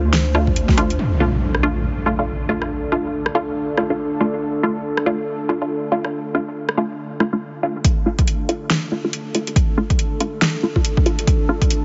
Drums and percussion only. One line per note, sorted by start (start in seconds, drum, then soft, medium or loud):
0.13 snare loud
0.13 closed hi-hat medium
0.35 cross-stick medium
0.47 kick medium
0.56 closed hi-hat medium
0.69 kick loud
0.69 snare soft
0.78 closed hi-hat medium
0.90 closed hi-hat medium
1.55 cross-stick medium
2.62 cross-stick soft
3.26 cross-stick medium
3.77 cross-stick medium
4.97 cross-stick medium
6.05 cross-stick soft
6.69 cross-stick medium
7.20 cross-stick medium
7.85 kick loud
7.85 closed hi-hat medium
8.19 kick medium
8.19 closed hi-hat medium
8.28 closed hi-hat medium
8.49 closed hi-hat soft
8.70 snare loud
8.70 closed hi-hat medium
9.13 closed hi-hat medium
9.35 closed hi-hat medium
9.47 closed hi-hat medium
9.56 kick loud
9.56 closed hi-hat medium
9.90 kick loud
9.90 closed hi-hat medium
9.99 closed hi-hat medium
10.20 closed hi-hat medium
10.42 snare loud
10.42 closed hi-hat medium
10.76 kick medium
10.85 closed hi-hat medium
10.97 kick loud
11.06 closed hi-hat medium
11.19 closed hi-hat medium
11.27 kick loud
11.27 closed hi-hat medium
11.62 kick loud
11.62 closed hi-hat medium
11.70 closed hi-hat medium